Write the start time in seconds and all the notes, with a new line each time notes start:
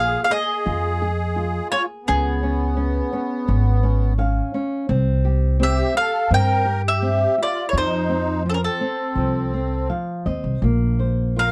Already playing: A#1 A#3 F4 G#4 F5
0.23 G#4 F5
0.29 G#4 D#5
0.66 F2 F4
1.02 G#4
1.36 F4
1.69 F4 G#4 C#5
2.05 B3 C#4 G#4
2.09 C#2
2.43 C#4
2.77 C#4
3.13 C#4
3.48 G#1 C#4
3.83 C#4
4.18 C#4 F5
4.54 C#4
4.89 C2 C4
5.25 G4
5.60 C4 G4 E5
5.95 G4 A4 F5
6.31 G2 C4 A#4 G5
6.66 G4
6.87 G4 E5
7.02 C4
7.38 F4 G4
7.43 D5
7.68 E4 C#5
7.73 F2 F3
7.77 D#4 C5
8.09 C4
8.46 F3 C4 A4
8.52 C#4 A#4
8.63 C4 A4
8.81 C4
9.15 C2 F3
9.54 C4
9.90 F3 F5
10.26 D#2 C4 D#5
10.44 C2
10.62 A#1 A#3
10.99 C5
11.36 F4 A#4 F5